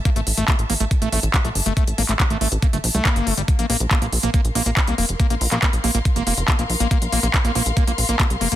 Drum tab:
HH |xxoxxxoxxxoxxxox|xxoxxxoxxxoxxxox|xxoxxxoxxxoxxxox|xxoxxxoxxxoxxxox|
CP |----x-------x---|---xx-------x---|----x-------x---|---xx-------x---|
BD |o---o---o---o---|o---o---o---o---|o---o---o---o---|o---o---o---o---|

HH |xxoxxxoxxxoxxxox|
CP |----x-------x---|
BD |o---o---o---o---|